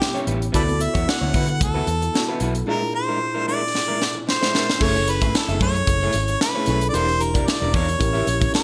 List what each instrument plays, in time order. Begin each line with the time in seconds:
Already playing: tine electric piano B3 C#4 E4 G4, harmonica G4
0.00 muted clean electric guitar stroke, snare
0.14 clean electric guitar G3 C#4 E4 C#5, closed hi-hat
0.26 fingered electric bass A1, clean electric guitar G3 C#4 E4 B4, closed hi-hat
0.41 muted clean electric guitar stroke, closed hi-hat
0.52 fingered electric bass D2, clean electric guitar B3 E4 F#4 B4, tine electric piano B3 E4 F#4 A4, harmonica A4 B4 D5, kick, closed hi-hat
0.67 muted clean electric guitar stroke, closed hi-hat
0.79 harmonica E5, muted clean electric guitar stroke, closed hi-hat
0.94 fingered electric bass E2, clean electric guitar B3 E4 F#4 C#5, kick, closed hi-hat
1.06 harmonica F#5, muted clean electric guitar stroke, snare
1.21 fingered electric bass D2, clean electric guitar B3 E4 F#4 C#5
1.33 fingered electric bass D3, clean electric guitar B3 E4 F#4 B4, kick, open hi-hat
1.48 muted clean electric guitar stroke, closed hi-hat
1.60 fingered electric bass D2, harmonica A4, muted clean electric guitar stroke, kick, closed hi-hat
1.74 clean electric guitar B3 E4 F#4 B4
1.87 fingered electric bass E2, muted clean electric guitar stroke, closed hi-hat
2.02 muted clean electric guitar stroke, closed hi-hat
2.14 tine electric piano B3 E4 F#4 A4, muted clean electric guitar stroke, snare
2.28 clean electric guitar B3 E4 F#4 B4
2.40 fingered electric bass B1, clean electric guitar B3 E4 F#4 B4, closed hi-hat
2.55 muted clean electric guitar stroke, closed hi-hat
2.66 tine electric piano A#2 D4 E4 F4 G#4, clean electric guitar G#3 D4 E4 A#4, harmonica A#4
2.82 muted clean electric guitar stroke
2.94 harmonica C5, muted clean electric guitar stroke
3.08 clean electric guitar G#3 D4 E4 A#4
3.21 muted clean electric guitar stroke
3.34 clean electric guitar G#3 D4 E4 A#4
3.47 clean electric guitar G#3 D4 E4 A#4, harmonica D5
3.62 muted clean electric guitar stroke
3.74 muted clean electric guitar stroke, snare
3.88 clean electric guitar G#3 D4 E4 A#4
4.00 muted clean electric guitar stroke, snare
4.15 muted clean electric guitar stroke
4.27 harmonica C5, muted clean electric guitar stroke, snare
4.41 clean electric guitar G#3 D4 E4 C5, snare
4.54 clean electric guitar G#3 D4 E4 A#4, snare
4.69 muted clean electric guitar stroke, snare
4.79 fingered electric bass F#1, clean electric guitar A3 E4 G#4 C#5, tine electric piano C#4 E4 G#4 A4, harmonica C#5, kick, crash, tambourine
4.96 muted clean electric guitar stroke, tambourine
5.07 harmonica B4, muted clean electric guitar stroke, closed hi-hat, tambourine
5.21 fingered electric bass G#1, clean electric guitar A3 E4 G#4 E5, kick, closed hi-hat, tambourine
5.34 harmonica A4, muted clean electric guitar stroke, snare, tambourine
5.48 fingered electric bass F#1, clean electric guitar A3 E4 G#4 E5, closed hi-hat
5.60 fingered electric bass F#2, clean electric guitar A3 E4 G#4 C#5, harmonica C#5, kick, open hi-hat
5.75 muted clean electric guitar stroke, closed hi-hat
5.87 fingered electric bass F#1, muted clean electric guitar stroke, kick, closed hi-hat
6.01 clean electric guitar A3 E4 G#4 C#5, tambourine
6.13 fingered electric bass G#1, muted clean electric guitar stroke, closed hi-hat, tambourine
6.28 muted clean electric guitar stroke, closed hi-hat
6.41 harmonica B4, muted clean electric guitar stroke, snare, tambourine
6.55 clean electric guitar A3 E4 G#4 C#5
6.66 fingered electric bass B1, clean electric guitar A3 E4 G#4 C#5, tine electric piano C#4 E4 G#4 A4, closed hi-hat, tambourine
6.81 muted clean electric guitar stroke, closed hi-hat
6.89 tine electric piano D4 E4, harmonica D5
6.94 fingered electric bass E1, clean electric guitar D4 G4 A#4 D5, tine electric piano G4 A#4, harmonica C5, closed hi-hat, tambourine
7.08 muted clean electric guitar stroke, closed hi-hat, tambourine
7.21 harmonica A#4, muted clean electric guitar stroke, closed hi-hat, tambourine
7.34 fingered electric bass F1, clean electric guitar D4 G4 A#4 D5, kick, closed hi-hat, tambourine
7.47 harmonica D5, muted clean electric guitar stroke, snare, tambourine
7.61 fingered electric bass E1, clean electric guitar D4 G4 A#4 D5
7.73 fingered electric bass E2, clean electric guitar D4 G4 A#4 D5, harmonica C#5, kick, open hi-hat
7.87 muted clean electric guitar stroke, closed hi-hat, tambourine
7.99 fingered electric bass A1, tine electric piano C#4 E4 G4 A#4, muted clean electric guitar stroke, kick, closed hi-hat
8.13 clean electric guitar C#4 G4 A#4 E5, tambourine
8.26 fingered electric bass A#1, muted clean electric guitar stroke, closed hi-hat, tambourine
8.40 muted clean electric guitar stroke, kick, closed hi-hat, tambourine
8.52 harmonica A#4, muted clean electric guitar stroke, snare, tambourine